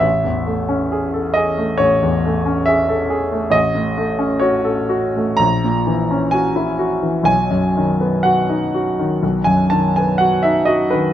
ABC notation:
X:1
M:4/4
L:1/16
Q:1/4=65
K:Bmix
V:1 name="Grand piano"
e6 d2 c4 e4 | d4 c4 ^a4 g4 | g4 f4- f g a g f e d B |]
V:2 name="Grand piano"
A,,, E,, A, C G A G A, A,,, E,, A, C G A G A, | A,,, A,, A, C F A F A, ^A,,, ^A,, E, C F E F E, | B,,, F,, D, B, F D F D, B,,, F,, D, B, F D F D, |]